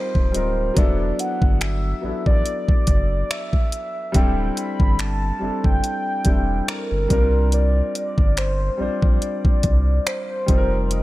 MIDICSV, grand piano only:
0, 0, Header, 1, 2, 480
1, 0, Start_track
1, 0, Key_signature, 1, "minor"
1, 0, Tempo, 845070
1, 435, Time_signature, 4, 2, 24, 8
1, 6264, End_track
2, 0, Start_track
2, 0, Title_t, "Grand piano"
2, 0, Program_c, 0, 0
2, 0, Control_c, 0, 64, 127
2, 0, Note_on_c, 0, 55, 70
2, 0, Note_on_c, 0, 60, 64
2, 0, Note_on_c, 0, 63, 64
2, 0, Note_on_c, 0, 65, 64
2, 0, Note_on_c, 0, 70, 60
2, 0, Note_on_c, 0, 72, 76
2, 62, Note_off_c, 0, 55, 0
2, 65, Note_off_c, 0, 60, 0
2, 69, Note_off_c, 0, 63, 0
2, 72, Note_off_c, 0, 65, 0
2, 94, Note_off_c, 0, 72, 0
2, 181, Note_on_c, 0, 55, 69
2, 188, Note_on_c, 0, 60, 64
2, 195, Note_on_c, 0, 63, 62
2, 202, Note_on_c, 0, 65, 62
2, 208, Note_off_c, 0, 70, 0
2, 208, Note_on_c, 0, 70, 76
2, 366, Note_off_c, 0, 55, 0
2, 369, Note_off_c, 0, 60, 0
2, 373, Note_off_c, 0, 63, 0
2, 376, Note_off_c, 0, 65, 0
2, 380, Note_off_c, 0, 70, 0
2, 420, Note_on_c, 0, 54, 93
2, 428, Note_on_c, 0, 59, 83
2, 434, Note_on_c, 0, 62, 81
2, 441, Control_c, 0, 64, 0
2, 441, Note_on_c, 0, 64, 85
2, 448, Note_on_c, 0, 69, 101
2, 541, Control_c, 0, 64, 127
2, 948, Note_off_c, 0, 54, 0
2, 952, Note_off_c, 0, 59, 0
2, 955, Note_off_c, 0, 62, 0
2, 958, Note_off_c, 0, 64, 0
2, 961, Note_off_c, 0, 69, 0
2, 1141, Note_on_c, 0, 54, 73
2, 1149, Note_on_c, 0, 59, 64
2, 1155, Note_on_c, 0, 62, 65
2, 1163, Note_on_c, 0, 64, 64
2, 1169, Note_on_c, 0, 69, 78
2, 1840, Note_off_c, 0, 54, 0
2, 1844, Note_off_c, 0, 59, 0
2, 1847, Note_off_c, 0, 62, 0
2, 1851, Note_off_c, 0, 64, 0
2, 1854, Note_off_c, 0, 69, 0
2, 2341, Note_on_c, 0, 55, 92
2, 2348, Note_on_c, 0, 60, 86
2, 2355, Note_on_c, 0, 62, 86
2, 2362, Control_c, 0, 64, 0
2, 2362, Note_on_c, 0, 64, 86
2, 2369, Note_on_c, 0, 69, 101
2, 2471, Control_c, 0, 64, 127
2, 2868, Note_off_c, 0, 55, 0
2, 2872, Note_off_c, 0, 60, 0
2, 2875, Note_off_c, 0, 62, 0
2, 2879, Note_off_c, 0, 64, 0
2, 2882, Note_off_c, 0, 69, 0
2, 3062, Note_on_c, 0, 55, 72
2, 3069, Note_on_c, 0, 60, 69
2, 3075, Note_on_c, 0, 62, 67
2, 3082, Note_on_c, 0, 64, 65
2, 3090, Note_on_c, 0, 69, 77
2, 3422, Note_off_c, 0, 55, 0
2, 3425, Note_off_c, 0, 60, 0
2, 3428, Note_off_c, 0, 62, 0
2, 3432, Note_off_c, 0, 64, 0
2, 3436, Note_off_c, 0, 69, 0
2, 3544, Note_on_c, 0, 55, 68
2, 3550, Note_on_c, 0, 60, 66
2, 3558, Note_on_c, 0, 62, 63
2, 3564, Note_on_c, 0, 64, 63
2, 3571, Note_on_c, 0, 69, 74
2, 3903, Note_off_c, 0, 55, 0
2, 3906, Note_off_c, 0, 60, 0
2, 3910, Note_off_c, 0, 62, 0
2, 3913, Note_off_c, 0, 64, 0
2, 3916, Note_off_c, 0, 69, 0
2, 4022, Note_on_c, 0, 55, 80
2, 4029, Note_on_c, 0, 60, 76
2, 4036, Note_on_c, 0, 62, 73
2, 4043, Control_c, 0, 64, 0
2, 4043, Note_on_c, 0, 65, 70
2, 4049, Note_on_c, 0, 70, 87
2, 4131, Control_c, 0, 64, 127
2, 4800, Note_off_c, 0, 55, 0
2, 4804, Note_off_c, 0, 60, 0
2, 4807, Note_off_c, 0, 62, 0
2, 4811, Note_off_c, 0, 65, 0
2, 4814, Note_off_c, 0, 70, 0
2, 4983, Note_on_c, 0, 55, 73
2, 4990, Note_on_c, 0, 60, 62
2, 4997, Note_on_c, 0, 62, 65
2, 5004, Note_on_c, 0, 65, 67
2, 5011, Note_on_c, 0, 72, 75
2, 5681, Note_off_c, 0, 55, 0
2, 5685, Note_off_c, 0, 60, 0
2, 5688, Note_off_c, 0, 62, 0
2, 5692, Note_off_c, 0, 65, 0
2, 5695, Note_off_c, 0, 72, 0
2, 5943, Note_on_c, 0, 55, 82
2, 5949, Note_on_c, 0, 60, 69
2, 5956, Note_on_c, 0, 63, 73
2, 5962, Control_c, 0, 64, 0
2, 5963, Note_on_c, 0, 65, 70
2, 5970, Note_on_c, 0, 69, 69
2, 6002, Note_off_c, 0, 69, 0
2, 6007, Note_on_c, 0, 70, 90
2, 6066, Control_c, 0, 64, 127
2, 6264, Note_off_c, 0, 55, 0
2, 6264, Note_off_c, 0, 60, 0
2, 6264, Note_off_c, 0, 63, 0
2, 6264, Note_off_c, 0, 65, 0
2, 6264, Note_off_c, 0, 70, 0
2, 6264, End_track
0, 0, End_of_file